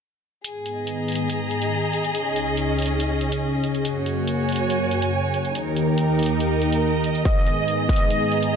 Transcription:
0.44 analog synth pad G#2 D#3 B3 G#4, string section G#4, closed hi-hat
0.66 closed hi-hat
0.75 string section D#5
0.87 closed hi-hat
0.92 string section A#5
1.08 closed hi-hat
1.12 closed hi-hat
1.15 closed hi-hat
1.30 closed hi-hat
1.51 closed hi-hat
1.62 closed hi-hat
1.93 closed hi-hat
2.04 closed hi-hat
2.15 analog synth pad C#2 C#3 D#4, string section C#4, closed hi-hat
2.36 closed hi-hat
2.57 closed hi-hat
2.79 closed hi-hat
2.82 closed hi-hat
2.86 closed hi-hat
3.00 closed hi-hat
3.21 closed hi-hat
3.32 closed hi-hat
3.64 closed hi-hat
3.75 closed hi-hat
3.85 analog synth pad F#2 A#3, string section F#4, closed hi-hat
3.96 string section C#5
4.06 closed hi-hat
4.28 closed hi-hat
4.36 string section G#5
4.49 closed hi-hat
4.52 closed hi-hat
4.56 closed hi-hat
4.70 closed hi-hat
4.91 closed hi-hat
5.02 closed hi-hat
5.34 closed hi-hat
5.45 closed hi-hat
5.55 analog synth pad D#2 D#3 A#3 G4, string section D#4, closed hi-hat
5.63 string section A#4
5.77 closed hi-hat
5.98 closed hi-hat
6.08 string section D#5
6.19 closed hi-hat
6.23 closed hi-hat
6.26 closed hi-hat
6.40 closed hi-hat
6.62 closed hi-hat
6.73 closed hi-hat
7.04 closed hi-hat
7.15 closed hi-hat
7.25 analog synth pad G#2 D#3 B3 G#4, string section G#4, supersaw synth D#5, kick, closed hi-hat
7.47 closed hi-hat
7.68 closed hi-hat
7.76 string section A#5
7.89 supersaw synth D#5, kick, closed hi-hat
7.93 closed hi-hat
7.96 closed hi-hat
8.10 closed hi-hat
8.32 closed hi-hat
8.43 closed hi-hat
8.53 supersaw synth D#5

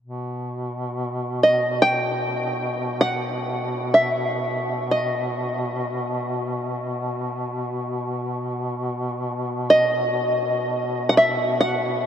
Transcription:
0.02 duduk B2
1.43 five-string banjo D#5
1.82 five-string banjo G5
3.01 five-string banjo F#5
3.94 five-string banjo E5
4.91 five-string banjo D#5
9.70 five-string banjo D#5
11.09 five-string banjo F#5
11.17 five-string banjo E5
11.61 five-string banjo F#5

